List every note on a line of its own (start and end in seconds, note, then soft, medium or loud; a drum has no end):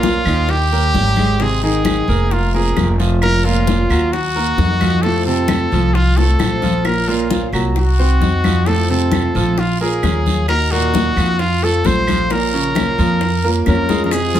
0.00 0.20 A#1 medium
0.00 0.18 A#2 medium
0.00 0.25 F3 medium
0.00 0.19 A#3 medium
0.00 0.25 A#3 medium
0.00 0.52 F4 medium
0.00 high bongo soft
0.00 high conga medium
0.00 short guiro medium
0.04 0.25 C#4 medium
0.04 0.25 F4 medium
0.25 0.90 D#2 medium
0.25 0.64 D#3 medium
0.25 0.48 A#3 soft
0.25 0.48 C#4 soft
0.25 0.64 D#4 medium
0.25 0.48 F4 soft
0.25 high conga soft
0.25 short guiro medium
0.25 claves medium
0.49 1.43 G4 loud
0.49 muted steel-string acoustic guitar stroke medium
0.49 high bongo medium
0.49 high conga soft
0.49 long guiro medium
0.72 0.93 G3 soft
0.72 1.09 A#3 medium
0.72 0.93 C#4 soft
0.72 0.94 G4 soft
0.72 1.10 A#4 medium
0.72 high bongo soft
0.72 high conga soft
0.93 2.02 G#1 medium
0.93 1.38 D#3 medium
0.93 1.39 G3 medium
0.93 1.39 C#4 medium
0.93 1.39 G4 medium
0.93 high bongo soft
0.93 low bongo medium
0.93 high conga medium
0.93 short guiro medium
1.16 1.36 G#3 medium
1.16 1.37 G#4 medium
1.16 high bongo soft
1.16 high conga medium
1.16 short guiro medium
1.16 claves medium
1.39 1.59 C3 medium
1.39 1.83 D#3 medium
1.39 1.84 G#3 medium
1.39 1.84 C4 medium
1.39 1.59 C4 medium
1.39 1.84 D#4 medium
1.39 1.85 G#4 medium
1.39 1.63 G#4 medium
1.39 high bongo medium
1.39 high conga soft
1.39 long guiro medium
1.62 2.00 D#3 medium
1.62 2.01 D#4 medium
1.62 2.34 G#4 medium
1.62 high bongo soft
1.62 high conga soft
1.85 2.07 D#3 medium
1.85 2.07 G#3 medium
1.85 2.07 C4 medium
1.85 2.07 D#4 medium
1.85 2.07 G#4 medium
1.85 high bongo soft
1.85 high conga medium
1.85 short guiro medium
1.85 claves medium
2.08 2.72 F1 loud
2.08 2.46 A#3 medium
2.08 2.31 C4 soft
2.08 2.31 D#4 soft
2.08 2.30 G#4 soft
2.08 2.46 A#4 medium
2.08 high conga soft
2.08 short guiro medium
2.31 2.54 F4 medium
2.31 muted steel-string acoustic guitar stroke medium
2.31 high bongo medium
2.31 high conga soft
2.31 long guiro medium
2.53 2.91 A#3 medium
2.53 2.76 A#3 soft
2.53 2.76 C4 soft
2.53 2.75 F4 soft
2.53 2.93 G#4 medium
2.53 2.92 A#4 medium
2.53 high bongo soft
2.53 high conga soft
2.76 3.84 F1 medium
2.76 3.20 F3 medium
2.76 3.21 A#3 medium
2.76 3.22 C4 medium
2.76 3.22 F4 medium
2.76 high bongo soft
2.76 low bongo medium
2.76 high conga medium
2.76 short guiro medium
2.76 claves medium
3.00 3.37 F3 medium
3.00 3.37 F4 medium
3.00 high bongo soft
3.00 short guiro medium
3.22 3.66 F3 medium
3.22 3.67 A#3 medium
3.22 3.67 C#4 medium
3.22 3.67 F4 medium
3.22 3.46 A#4 loud
3.22 high bongo medium
3.22 high conga soft
3.22 long guiro medium
3.22 claves medium
3.45 3.82 A#2 medium
3.45 3.82 A#3 medium
3.45 4.14 F4 medium
3.45 high bongo soft
3.45 high conga soft
3.67 3.89 F3 medium
3.67 3.90 A#3 medium
3.67 3.90 C#4 medium
3.67 3.89 F4 medium
3.67 high bongo soft
3.67 high conga medium
3.67 short guiro medium
3.90 4.54 D#2 medium
3.90 4.28 F#3 medium
3.90 4.12 A#3 soft
3.90 4.12 C#4 soft
3.90 4.12 F4 medium
3.90 4.28 F#4 medium
3.90 high conga soft
3.90 short guiro medium
3.90 claves medium
4.12 5.04 F#4 medium
4.12 muted steel-string acoustic guitar stroke medium
4.12 high bongo medium
4.12 high conga soft
4.12 long guiro medium
4.35 4.73 A#3 medium
4.35 4.57 A#3 soft
4.35 4.58 D#4 soft
4.35 4.57 F#4 soft
4.35 4.73 A#4 medium
4.35 high bongo soft
4.35 high conga soft
4.57 5.65 F2 medium
4.57 5.02 D#3 medium
4.57 5.03 A#3 medium
4.57 5.03 D#4 medium
4.57 5.03 F#4 medium
4.57 high bongo soft
4.57 low bongo medium
4.57 high conga medium
4.57 short guiro medium
4.81 5.00 F3 medium
4.81 5.00 F4 medium
4.81 high bongo soft
4.81 high conga medium
4.81 short guiro medium
4.81 claves medium
5.02 5.23 A2 medium
5.02 5.48 C3 medium
5.02 5.48 F3 medium
5.02 5.23 A3 medium
5.02 5.49 A3 medium
5.02 5.49 C4 medium
5.02 5.49 F4 medium
5.02 5.25 A4 medium
5.02 high bongo medium
5.02 high conga soft
5.02 long guiro medium
5.26 5.64 C3 medium
5.26 5.64 C4 medium
5.26 5.96 A4 medium
5.26 high bongo soft
5.26 high conga soft
5.48 5.71 C3 medium
5.48 5.71 F3 medium
5.48 5.71 A3 medium
5.48 5.72 C4 medium
5.48 5.71 F4 medium
5.48 high bongo soft
5.48 high conga medium
5.48 short guiro medium
5.48 claves medium
5.71 6.36 C2 medium
5.71 6.10 F3 medium
5.71 5.93 A3 soft
5.71 5.93 C4 soft
5.71 5.93 F4 medium
5.71 6.10 F4 medium
5.71 high conga soft
5.71 short guiro medium
5.94 6.18 F4 medium
5.94 muted steel-string acoustic guitar stroke medium
5.94 high bongo medium
5.94 high conga soft
5.94 long guiro medium
6.17 6.55 A3 medium
6.17 6.39 A3 soft
6.17 6.39 C4 soft
6.17 6.39 F4 soft
6.17 6.87 A4 medium
6.17 6.55 A4 medium
6.17 high bongo medium
6.17 high conga soft
6.39 7.47 A#1 medium
6.39 6.84 C3 medium
6.39 6.84 F3 medium
6.39 6.85 A3 medium
6.39 6.85 C4 medium
6.39 6.85 F4 medium
6.39 high bongo medium
6.39 high conga medium
6.39 short guiro medium
6.39 claves medium
6.62 7.00 F3 medium
6.62 7.00 F4 medium
6.62 low bongo medium
6.62 high conga medium
6.62 short guiro medium
6.85 7.29 F3 medium
6.85 7.30 A#3 medium
6.85 7.30 C#4 medium
6.85 7.31 F4 medium
6.85 7.10 A#4 medium
6.85 high bongo medium
6.85 high conga soft
6.85 long guiro medium
6.85 claves medium
7.08 7.45 A#2 medium
7.08 7.46 A#3 medium
7.08 7.50 F4 medium
7.08 high bongo soft
7.08 high conga soft
7.30 7.52 F3 medium
7.30 7.53 A#3 medium
7.30 7.52 C#4 medium
7.30 7.52 F4 medium
7.30 high bongo medium
7.30 high conga medium
7.30 short guiro medium
7.52 8.17 C2 medium
7.52 7.91 F#3 medium
7.52 7.75 A#3 soft
7.52 7.75 C#4 soft
7.52 7.75 F4 soft
7.52 7.91 F#4 medium
7.52 high conga soft
7.52 short guiro medium
7.52 claves medium
7.75 8.69 F#4 medium
7.75 muted steel-string acoustic guitar stroke medium
7.75 high bongo medium
7.75 high conga soft
7.75 long guiro medium
7.98 8.36 C4 medium
7.98 8.21 D#4 soft
7.98 8.21 F#4 soft
7.98 8.37 C5 medium
7.98 high bongo soft
7.98 high conga soft
8.21 9.28 F2 medium
8.21 8.66 C4 medium
8.21 8.67 D#4 medium
8.21 8.67 F#4 medium
8.21 high bongo soft
8.21 low bongo medium
8.21 high conga medium
8.21 short guiro medium
8.44 8.63 F3 medium
8.44 8.63 F4 medium
8.44 high bongo soft
8.44 high conga medium
8.44 short guiro medium
8.44 claves medium
8.66 8.86 A2 medium
8.66 9.11 C3 medium
8.66 9.11 F3 medium
8.66 8.86 A3 medium
8.66 9.12 A3 medium
8.66 9.12 C4 medium
8.66 9.13 F4 medium
8.66 8.90 A4 medium
8.66 high bongo medium
8.66 high conga soft
8.66 long guiro medium
8.89 9.27 C3 medium
8.89 9.27 C4 medium
8.89 9.60 A4 medium
8.89 high bongo soft
8.89 high conga soft
9.12 9.34 C3 medium
9.12 9.34 F3 medium
9.12 9.35 A3 medium
9.12 9.35 C4 medium
9.12 9.35 F4 medium
9.12 high bongo medium
9.12 high conga medium
9.12 short guiro medium
9.12 claves medium
9.35 9.99 A#1 loud
9.35 9.73 F3 medium
9.35 9.58 A3 soft
9.35 9.58 C4 soft
9.35 9.73 F4 medium
9.35 9.57 F4 soft
9.35 high conga soft
9.35 short guiro medium
9.58 9.80 F4 medium
9.58 muted steel-string acoustic guitar stroke medium
9.58 high bongo medium
9.58 high conga soft
9.58 long guiro medium
9.81 10.18 A#3 medium
9.81 10.03 A#3 soft
9.81 10.03 C#4 soft
9.81 10.03 F4 soft
9.81 10.45 G#4 medium
9.81 10.18 A#4 medium
9.81 high bongo soft
9.81 high conga soft
10.03 11.10 D#2 medium
10.03 10.48 F3 medium
10.03 10.48 A#3 medium
10.03 10.48 C#4 medium
10.03 10.48 F4 medium
10.03 high bongo soft
10.03 low bongo medium
10.03 high conga medium
10.03 short guiro medium
10.03 claves medium
10.26 high bongo soft
10.26 high conga medium
10.26 short guiro medium
10.48 10.93 D#3 medium
10.48 10.93 A#3 medium
10.48 10.94 D#4 medium
10.48 10.94 F#4 medium
10.48 10.73 A#4 loud
10.48 high bongo medium
10.48 high conga soft
10.48 long guiro medium
10.48 claves medium
10.71 11.09 A#2 medium
10.71 11.09 A#3 medium
10.71 11.41 F#4 medium
10.71 high bongo soft
10.71 high conga soft
10.94 11.16 D#3 medium
10.94 11.16 A#3 medium
10.94 11.17 D#4 medium
10.94 11.16 F#4 medium
10.94 high bongo medium
10.94 high conga medium
10.94 short guiro medium
11.16 11.81 F2 loud
11.16 11.54 F3 medium
11.16 11.39 A#3 soft
11.16 11.39 D#4 soft
11.16 11.54 F4 medium
11.16 11.39 F#4 soft
11.16 high conga soft
11.16 short guiro medium
11.16 claves medium
11.39 11.65 F4 medium
11.39 muted steel-string acoustic guitar stroke medium
11.39 high bongo medium
11.39 high conga soft
11.39 long guiro medium
11.62 12.00 A3 medium
11.62 11.84 A3 soft
11.62 11.84 C4 soft
11.62 11.84 F4 soft
11.62 12.00 A4 medium
11.62 11.87 A4 medium
11.62 high bongo soft
11.62 high conga soft
11.84 12.92 A#1 medium
11.84 12.29 C3 medium
11.84 12.29 F3 medium
11.84 12.30 A3 medium
11.84 12.30 C4 medium
11.84 12.30 F4 medium
11.84 12.34 C5 medium
11.84 high bongo soft
11.84 low bongo medium
11.84 high conga medium
11.84 short guiro medium
12.07 12.26 F3 medium
12.07 12.26 F4 medium
12.07 high bongo soft
12.07 high conga medium
12.07 short guiro medium
12.07 claves medium
12.30 12.49 A#2 medium
12.30 12.75 F3 medium
12.30 12.49 A#3 medium
12.30 12.75 A#3 medium
12.30 12.76 C#4 medium
12.30 12.76 F4 medium
12.30 13.51 A#4 medium
12.30 high bongo medium
12.30 high conga soft
12.30 long guiro medium
12.53 12.90 C#3 medium
12.53 12.91 C#4 medium
12.53 high bongo soft
12.53 high conga soft
12.75 12.98 F3 medium
12.75 12.98 A#3 medium
12.75 12.98 C#4 medium
12.75 12.99 F4 medium
12.75 high bongo medium
12.75 high conga medium
12.75 short guiro medium
12.75 claves medium
12.98 13.62 F2 loud
12.98 13.36 F3 medium
12.98 13.21 A#3 soft
12.98 13.21 C#4 soft
12.98 13.36 F4 medium
12.98 13.21 F4 soft
12.98 high conga soft
12.98 short guiro medium
13.21 muted steel-string acoustic guitar stroke medium
13.21 high bongo medium
13.21 high conga soft
13.21 long guiro medium
13.44 13.81 A#3 medium
13.44 13.67 A#3 soft
13.44 13.66 C#4 soft
13.44 13.66 F4 soft
13.44 13.81 A#4 medium
13.44 high bongo soft
13.44 high conga soft
13.66 14.40 F2 medium
13.66 14.11 F3 medium
13.66 14.12 A#3 medium
13.66 14.12 C#4 medium
13.66 14.12 F4 medium
13.66 14.03 A#4 medium
13.66 high bongo soft
13.66 low bongo medium
13.66 high conga medium
13.66 short guiro medium
13.66 claves medium
13.89 14.08 G#3 medium
13.89 14.08 G#4 medium
13.89 high bongo medium
13.89 high conga medium
13.89 short guiro medium
14.04 14.13 C#4 medium
14.04 14.13 A#4 medium
14.04 low bongo medium
14.11 14.34 C3 medium
14.11 14.34 F3 medium
14.11 14.34 G#3 medium
14.11 14.34 C4 medium
14.11 14.33 F4 medium
14.11 14.40 G#4 medium
14.11 high bongo medium
14.11 high conga soft
14.11 long guiro medium
14.11 claves medium
14.11 maracas medium
14.34 14.40 F3 medium
14.34 14.40 G#3 soft
14.34 14.40 C4 soft
14.34 14.40 F4 medium
14.34 14.40 G#4 medium
14.34 high bongo soft
14.34 high conga soft
14.34 maracas soft